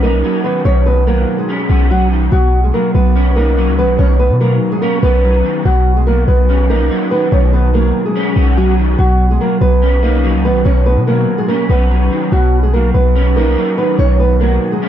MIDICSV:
0, 0, Header, 1, 4, 480
1, 0, Start_track
1, 0, Key_signature, 5, "major"
1, 0, Tempo, 416667
1, 752, Time_signature, 4, 2, 24, 8
1, 17149, End_track
2, 0, Start_track
2, 0, Title_t, "Nylon-string guitar"
2, 0, Program_c, 0, 24
2, 33, Note_on_c, 0, 70, 74
2, 43, Note_on_c, 0, 58, 57
2, 484, Note_off_c, 0, 70, 0
2, 489, Note_off_c, 0, 58, 0
2, 508, Note_on_c, 0, 71, 83
2, 516, Note_on_c, 0, 59, 66
2, 695, Note_off_c, 0, 71, 0
2, 700, Note_off_c, 0, 59, 0
2, 750, Note_on_c, 0, 73, 107
2, 760, Note_on_c, 0, 61, 77
2, 936, Note_off_c, 0, 73, 0
2, 943, Note_off_c, 0, 61, 0
2, 993, Note_on_c, 0, 71, 85
2, 1003, Note_on_c, 0, 59, 76
2, 1178, Note_off_c, 0, 71, 0
2, 1184, Note_off_c, 0, 59, 0
2, 1235, Note_on_c, 0, 70, 79
2, 1244, Note_on_c, 0, 58, 67
2, 1572, Note_off_c, 0, 70, 0
2, 1577, Note_off_c, 0, 58, 0
2, 1597, Note_on_c, 0, 68, 81
2, 1606, Note_on_c, 0, 56, 59
2, 2159, Note_off_c, 0, 68, 0
2, 2164, Note_off_c, 0, 56, 0
2, 2197, Note_on_c, 0, 66, 100
2, 2206, Note_on_c, 0, 54, 76
2, 2381, Note_off_c, 0, 66, 0
2, 2386, Note_off_c, 0, 54, 0
2, 2668, Note_on_c, 0, 66, 102
2, 2677, Note_on_c, 0, 54, 79
2, 3009, Note_off_c, 0, 66, 0
2, 3014, Note_off_c, 0, 54, 0
2, 3041, Note_on_c, 0, 68, 81
2, 3049, Note_on_c, 0, 56, 64
2, 3130, Note_off_c, 0, 68, 0
2, 3136, Note_off_c, 0, 56, 0
2, 3156, Note_on_c, 0, 70, 79
2, 3166, Note_on_c, 0, 58, 68
2, 3340, Note_off_c, 0, 70, 0
2, 3346, Note_off_c, 0, 58, 0
2, 3395, Note_on_c, 0, 71, 87
2, 3405, Note_on_c, 0, 59, 68
2, 3845, Note_off_c, 0, 71, 0
2, 3851, Note_off_c, 0, 59, 0
2, 3870, Note_on_c, 0, 70, 74
2, 3880, Note_on_c, 0, 58, 62
2, 4323, Note_off_c, 0, 70, 0
2, 4328, Note_off_c, 0, 58, 0
2, 4361, Note_on_c, 0, 71, 85
2, 4370, Note_on_c, 0, 59, 69
2, 4543, Note_off_c, 0, 71, 0
2, 4549, Note_off_c, 0, 59, 0
2, 4591, Note_on_c, 0, 73, 111
2, 4601, Note_on_c, 0, 61, 91
2, 4777, Note_off_c, 0, 73, 0
2, 4783, Note_off_c, 0, 61, 0
2, 4831, Note_on_c, 0, 71, 80
2, 4840, Note_on_c, 0, 59, 68
2, 5017, Note_off_c, 0, 71, 0
2, 5023, Note_off_c, 0, 59, 0
2, 5077, Note_on_c, 0, 70, 84
2, 5087, Note_on_c, 0, 58, 67
2, 5413, Note_off_c, 0, 70, 0
2, 5418, Note_off_c, 0, 58, 0
2, 5434, Note_on_c, 0, 68, 97
2, 5443, Note_on_c, 0, 56, 67
2, 5526, Note_off_c, 0, 68, 0
2, 5532, Note_off_c, 0, 56, 0
2, 5549, Note_on_c, 0, 70, 91
2, 5558, Note_on_c, 0, 58, 70
2, 5736, Note_off_c, 0, 70, 0
2, 5741, Note_off_c, 0, 58, 0
2, 5794, Note_on_c, 0, 71, 91
2, 5804, Note_on_c, 0, 59, 70
2, 6470, Note_off_c, 0, 71, 0
2, 6475, Note_off_c, 0, 59, 0
2, 6514, Note_on_c, 0, 66, 97
2, 6523, Note_on_c, 0, 54, 77
2, 6852, Note_off_c, 0, 66, 0
2, 6856, Note_off_c, 0, 54, 0
2, 6870, Note_on_c, 0, 68, 82
2, 6880, Note_on_c, 0, 56, 67
2, 6964, Note_off_c, 0, 68, 0
2, 6969, Note_off_c, 0, 56, 0
2, 6990, Note_on_c, 0, 70, 88
2, 6999, Note_on_c, 0, 58, 67
2, 7176, Note_off_c, 0, 70, 0
2, 7182, Note_off_c, 0, 58, 0
2, 7231, Note_on_c, 0, 71, 77
2, 7239, Note_on_c, 0, 59, 60
2, 7683, Note_off_c, 0, 71, 0
2, 7687, Note_off_c, 0, 59, 0
2, 7715, Note_on_c, 0, 70, 76
2, 7725, Note_on_c, 0, 58, 61
2, 8165, Note_off_c, 0, 70, 0
2, 8170, Note_off_c, 0, 58, 0
2, 8192, Note_on_c, 0, 71, 87
2, 8201, Note_on_c, 0, 59, 65
2, 8377, Note_off_c, 0, 71, 0
2, 8383, Note_off_c, 0, 59, 0
2, 8433, Note_on_c, 0, 73, 104
2, 8443, Note_on_c, 0, 61, 77
2, 8618, Note_off_c, 0, 73, 0
2, 8624, Note_off_c, 0, 61, 0
2, 8675, Note_on_c, 0, 71, 86
2, 8683, Note_on_c, 0, 59, 74
2, 8859, Note_off_c, 0, 71, 0
2, 8864, Note_off_c, 0, 59, 0
2, 8916, Note_on_c, 0, 70, 76
2, 8926, Note_on_c, 0, 58, 66
2, 9253, Note_off_c, 0, 70, 0
2, 9258, Note_off_c, 0, 58, 0
2, 9280, Note_on_c, 0, 68, 81
2, 9289, Note_on_c, 0, 56, 63
2, 9841, Note_off_c, 0, 68, 0
2, 9845, Note_off_c, 0, 56, 0
2, 9877, Note_on_c, 0, 66, 99
2, 9887, Note_on_c, 0, 54, 73
2, 10061, Note_off_c, 0, 66, 0
2, 10067, Note_off_c, 0, 54, 0
2, 10349, Note_on_c, 0, 66, 100
2, 10359, Note_on_c, 0, 54, 80
2, 10689, Note_off_c, 0, 66, 0
2, 10694, Note_off_c, 0, 54, 0
2, 10721, Note_on_c, 0, 68, 81
2, 10731, Note_on_c, 0, 56, 62
2, 10810, Note_off_c, 0, 68, 0
2, 10816, Note_off_c, 0, 56, 0
2, 10837, Note_on_c, 0, 70, 79
2, 10846, Note_on_c, 0, 58, 65
2, 11021, Note_off_c, 0, 70, 0
2, 11026, Note_off_c, 0, 58, 0
2, 11074, Note_on_c, 0, 71, 91
2, 11083, Note_on_c, 0, 59, 66
2, 11525, Note_off_c, 0, 71, 0
2, 11529, Note_off_c, 0, 59, 0
2, 11550, Note_on_c, 0, 70, 76
2, 11558, Note_on_c, 0, 58, 63
2, 12002, Note_off_c, 0, 70, 0
2, 12007, Note_off_c, 0, 58, 0
2, 12038, Note_on_c, 0, 71, 84
2, 12047, Note_on_c, 0, 59, 69
2, 12221, Note_off_c, 0, 71, 0
2, 12227, Note_off_c, 0, 59, 0
2, 12269, Note_on_c, 0, 73, 108
2, 12277, Note_on_c, 0, 61, 91
2, 12456, Note_off_c, 0, 73, 0
2, 12461, Note_off_c, 0, 61, 0
2, 12510, Note_on_c, 0, 71, 78
2, 12521, Note_on_c, 0, 59, 66
2, 12697, Note_off_c, 0, 71, 0
2, 12703, Note_off_c, 0, 59, 0
2, 12755, Note_on_c, 0, 70, 81
2, 12765, Note_on_c, 0, 58, 66
2, 13092, Note_off_c, 0, 70, 0
2, 13098, Note_off_c, 0, 58, 0
2, 13112, Note_on_c, 0, 68, 97
2, 13122, Note_on_c, 0, 56, 67
2, 13205, Note_off_c, 0, 68, 0
2, 13211, Note_off_c, 0, 56, 0
2, 13228, Note_on_c, 0, 70, 94
2, 13237, Note_on_c, 0, 58, 70
2, 13415, Note_off_c, 0, 70, 0
2, 13421, Note_off_c, 0, 58, 0
2, 13474, Note_on_c, 0, 71, 87
2, 13484, Note_on_c, 0, 59, 67
2, 14150, Note_off_c, 0, 71, 0
2, 14156, Note_off_c, 0, 59, 0
2, 14195, Note_on_c, 0, 66, 97
2, 14203, Note_on_c, 0, 54, 74
2, 14532, Note_off_c, 0, 66, 0
2, 14536, Note_off_c, 0, 54, 0
2, 14550, Note_on_c, 0, 68, 81
2, 14558, Note_on_c, 0, 56, 66
2, 14644, Note_off_c, 0, 68, 0
2, 14649, Note_off_c, 0, 56, 0
2, 14670, Note_on_c, 0, 70, 84
2, 14680, Note_on_c, 0, 58, 67
2, 14856, Note_off_c, 0, 70, 0
2, 14862, Note_off_c, 0, 58, 0
2, 14910, Note_on_c, 0, 71, 77
2, 14919, Note_on_c, 0, 59, 61
2, 15362, Note_off_c, 0, 71, 0
2, 15367, Note_off_c, 0, 59, 0
2, 15395, Note_on_c, 0, 70, 78
2, 15404, Note_on_c, 0, 58, 60
2, 15845, Note_off_c, 0, 70, 0
2, 15850, Note_off_c, 0, 58, 0
2, 15871, Note_on_c, 0, 71, 86
2, 15880, Note_on_c, 0, 59, 67
2, 16057, Note_off_c, 0, 71, 0
2, 16062, Note_off_c, 0, 59, 0
2, 16114, Note_on_c, 0, 73, 105
2, 16124, Note_on_c, 0, 61, 76
2, 16299, Note_off_c, 0, 73, 0
2, 16305, Note_off_c, 0, 61, 0
2, 16355, Note_on_c, 0, 71, 86
2, 16365, Note_on_c, 0, 59, 74
2, 16539, Note_off_c, 0, 71, 0
2, 16545, Note_off_c, 0, 59, 0
2, 16596, Note_on_c, 0, 70, 78
2, 16606, Note_on_c, 0, 58, 66
2, 16933, Note_off_c, 0, 70, 0
2, 16938, Note_off_c, 0, 58, 0
2, 16959, Note_on_c, 0, 68, 79
2, 16968, Note_on_c, 0, 56, 62
2, 17149, Note_off_c, 0, 56, 0
2, 17149, Note_off_c, 0, 68, 0
2, 17149, End_track
3, 0, Start_track
3, 0, Title_t, "Clean electric guitar"
3, 0, Program_c, 1, 27
3, 0, Note_on_c, 1, 54, 87
3, 0, Note_on_c, 1, 61, 97
3, 33, Note_on_c, 1, 63, 90
3, 257, Note_off_c, 1, 54, 0
3, 270, Note_on_c, 1, 54, 98
3, 513, Note_on_c, 1, 51, 85
3, 752, Note_on_c, 1, 47, 94
3, 992, Note_off_c, 1, 61, 0
3, 1217, Note_off_c, 1, 54, 0
3, 1231, Note_on_c, 1, 54, 94
3, 1233, Note_off_c, 1, 63, 0
3, 1713, Note_off_c, 1, 51, 0
3, 1713, Note_on_c, 1, 61, 101
3, 1953, Note_off_c, 1, 47, 0
3, 1954, Note_on_c, 1, 59, 86
3, 2179, Note_off_c, 1, 54, 0
3, 2192, Note_on_c, 1, 54, 88
3, 2432, Note_on_c, 1, 51, 82
3, 2672, Note_off_c, 1, 51, 0
3, 2673, Note_off_c, 1, 54, 0
3, 2673, Note_off_c, 1, 59, 0
3, 2673, Note_off_c, 1, 61, 0
3, 2674, Note_on_c, 1, 47, 91
3, 3154, Note_on_c, 1, 54, 86
3, 3633, Note_on_c, 1, 61, 99
3, 3873, Note_off_c, 1, 47, 0
3, 3877, Note_on_c, 1, 63, 90
3, 4100, Note_off_c, 1, 54, 0
3, 4114, Note_on_c, 1, 54, 96
3, 4353, Note_on_c, 1, 51, 74
3, 4596, Note_on_c, 1, 47, 93
3, 4833, Note_off_c, 1, 61, 0
3, 5061, Note_off_c, 1, 54, 0
3, 5074, Note_on_c, 1, 54, 88
3, 5075, Note_off_c, 1, 63, 0
3, 5553, Note_off_c, 1, 51, 0
3, 5554, Note_on_c, 1, 61, 97
3, 5794, Note_off_c, 1, 47, 0
3, 5796, Note_on_c, 1, 59, 83
3, 6018, Note_off_c, 1, 54, 0
3, 6032, Note_on_c, 1, 54, 85
3, 6273, Note_on_c, 1, 51, 89
3, 6512, Note_off_c, 1, 54, 0
3, 6513, Note_off_c, 1, 51, 0
3, 6513, Note_off_c, 1, 61, 0
3, 6513, Note_on_c, 1, 47, 104
3, 6514, Note_off_c, 1, 59, 0
3, 6994, Note_on_c, 1, 54, 85
3, 7475, Note_on_c, 1, 61, 94
3, 7713, Note_off_c, 1, 47, 0
3, 7715, Note_on_c, 1, 63, 94
3, 7938, Note_off_c, 1, 54, 0
3, 7952, Note_on_c, 1, 54, 98
3, 8194, Note_on_c, 1, 51, 83
3, 8433, Note_on_c, 1, 47, 99
3, 8674, Note_off_c, 1, 61, 0
3, 8898, Note_off_c, 1, 54, 0
3, 8912, Note_on_c, 1, 54, 95
3, 8914, Note_off_c, 1, 63, 0
3, 9393, Note_off_c, 1, 51, 0
3, 9394, Note_on_c, 1, 61, 102
3, 9633, Note_off_c, 1, 47, 0
3, 9634, Note_on_c, 1, 59, 83
3, 9860, Note_off_c, 1, 54, 0
3, 9873, Note_on_c, 1, 54, 92
3, 10112, Note_on_c, 1, 51, 85
3, 10352, Note_on_c, 1, 47, 91
3, 10353, Note_off_c, 1, 51, 0
3, 10353, Note_off_c, 1, 54, 0
3, 10353, Note_off_c, 1, 59, 0
3, 10353, Note_off_c, 1, 61, 0
3, 10834, Note_on_c, 1, 54, 83
3, 11312, Note_on_c, 1, 61, 99
3, 11552, Note_off_c, 1, 47, 0
3, 11554, Note_on_c, 1, 63, 94
3, 11777, Note_off_c, 1, 54, 0
3, 11791, Note_on_c, 1, 54, 95
3, 12030, Note_on_c, 1, 51, 74
3, 12271, Note_on_c, 1, 47, 91
3, 12512, Note_off_c, 1, 61, 0
3, 12739, Note_off_c, 1, 54, 0
3, 12753, Note_off_c, 1, 63, 0
3, 12753, Note_on_c, 1, 54, 91
3, 13230, Note_on_c, 1, 61, 94
3, 13231, Note_off_c, 1, 51, 0
3, 13471, Note_on_c, 1, 59, 85
3, 13472, Note_off_c, 1, 47, 0
3, 13696, Note_off_c, 1, 54, 0
3, 13710, Note_on_c, 1, 54, 87
3, 13952, Note_on_c, 1, 51, 86
3, 14190, Note_on_c, 1, 47, 103
3, 14191, Note_off_c, 1, 54, 0
3, 14191, Note_off_c, 1, 61, 0
3, 14192, Note_off_c, 1, 59, 0
3, 14193, Note_off_c, 1, 51, 0
3, 14673, Note_on_c, 1, 54, 86
3, 15153, Note_on_c, 1, 61, 98
3, 15391, Note_off_c, 1, 47, 0
3, 15392, Note_on_c, 1, 63, 91
3, 15617, Note_off_c, 1, 54, 0
3, 15631, Note_on_c, 1, 54, 99
3, 15870, Note_on_c, 1, 51, 86
3, 16112, Note_on_c, 1, 47, 94
3, 16353, Note_off_c, 1, 61, 0
3, 16574, Note_off_c, 1, 54, 0
3, 16588, Note_on_c, 1, 54, 99
3, 16593, Note_off_c, 1, 63, 0
3, 17071, Note_off_c, 1, 51, 0
3, 17073, Note_on_c, 1, 61, 102
3, 17149, Note_off_c, 1, 47, 0
3, 17149, Note_off_c, 1, 54, 0
3, 17149, Note_off_c, 1, 61, 0
3, 17149, End_track
4, 0, Start_track
4, 0, Title_t, "808-style bass"
4, 0, Program_c, 2, 38
4, 30, Note_on_c, 2, 34, 99
4, 152, Note_on_c, 2, 35, 96
4, 169, Note_off_c, 2, 34, 0
4, 266, Note_off_c, 2, 35, 0
4, 751, Note_on_c, 2, 35, 113
4, 1443, Note_off_c, 2, 35, 0
4, 1952, Note_on_c, 2, 35, 105
4, 2644, Note_off_c, 2, 35, 0
4, 2674, Note_on_c, 2, 35, 112
4, 3134, Note_off_c, 2, 35, 0
4, 3394, Note_on_c, 2, 35, 109
4, 4233, Note_on_c, 2, 37, 100
4, 4251, Note_off_c, 2, 35, 0
4, 4413, Note_on_c, 2, 35, 102
4, 4431, Note_off_c, 2, 37, 0
4, 4584, Note_off_c, 2, 35, 0
4, 4594, Note_on_c, 2, 35, 105
4, 4953, Note_on_c, 2, 47, 105
4, 4970, Note_off_c, 2, 35, 0
4, 5295, Note_off_c, 2, 47, 0
4, 5792, Note_on_c, 2, 35, 108
4, 6253, Note_off_c, 2, 35, 0
4, 6512, Note_on_c, 2, 35, 113
4, 7204, Note_off_c, 2, 35, 0
4, 7232, Note_on_c, 2, 35, 109
4, 7712, Note_on_c, 2, 34, 99
4, 7729, Note_off_c, 2, 35, 0
4, 7833, Note_on_c, 2, 35, 97
4, 7850, Note_off_c, 2, 34, 0
4, 7947, Note_off_c, 2, 35, 0
4, 8434, Note_on_c, 2, 35, 114
4, 9125, Note_off_c, 2, 35, 0
4, 9633, Note_on_c, 2, 35, 110
4, 10324, Note_off_c, 2, 35, 0
4, 10353, Note_on_c, 2, 35, 109
4, 10814, Note_off_c, 2, 35, 0
4, 11073, Note_on_c, 2, 35, 110
4, 11913, Note_on_c, 2, 37, 102
4, 11931, Note_off_c, 2, 35, 0
4, 12092, Note_on_c, 2, 35, 101
4, 12109, Note_off_c, 2, 37, 0
4, 12263, Note_off_c, 2, 35, 0
4, 12273, Note_on_c, 2, 35, 106
4, 12633, Note_on_c, 2, 47, 105
4, 12650, Note_off_c, 2, 35, 0
4, 12975, Note_off_c, 2, 47, 0
4, 13472, Note_on_c, 2, 35, 110
4, 13933, Note_off_c, 2, 35, 0
4, 14193, Note_on_c, 2, 35, 112
4, 14884, Note_off_c, 2, 35, 0
4, 14912, Note_on_c, 2, 35, 105
4, 15392, Note_on_c, 2, 34, 101
4, 15409, Note_off_c, 2, 35, 0
4, 15512, Note_on_c, 2, 35, 101
4, 15529, Note_off_c, 2, 34, 0
4, 15626, Note_off_c, 2, 35, 0
4, 16113, Note_on_c, 2, 35, 115
4, 16804, Note_off_c, 2, 35, 0
4, 17149, End_track
0, 0, End_of_file